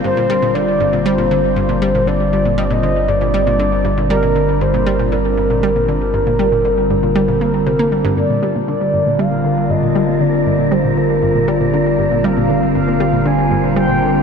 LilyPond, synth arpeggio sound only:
\new Staff \with { instrumentName = "Synth arpeggio sound" } { \clef bass \time 4/4 \key g \minor \tempo 4 = 118 g,16 bes,16 g16 bes,16 d16 r16 g,16 bes,16 g16 bes,16 d16 r16 g,16 bes,16 g16 bes,16 | d16 r16 g,16 bes,16 g16 bes,16 d16 r16 g,16 bes,16 g16 bes,16 d16 r16 g,16 bes,16 | g16 bes,16 d16 r16 g,16 bes,16 g16 bes,16 d16 r16 g,16 bes,16 g16 bes,16 d16 r16 | g,16 bes,16 g16 bes,16 d16 r16 g,16 bes,16 g16 bes,16 bes16 r16 c16 bes16 g16 g,16 |
g,16 bes,16 g16 bes,16 d16 r16 g,16 bes,16 g16 bes,16 d16 r16 g,16 bes,16 g16 bes,16 | d16 r16 g,16 bes,16 g16 bes,16 d16 r16 g,16 bes,16 g16 bes,16 d16 r16 g,16 bes,16 | g16 bes,16 d16 r16 g,16 bes,16 g16 bes,16 d16 r16 g,16 bes,16 g16 bes,16 d16 r16 | }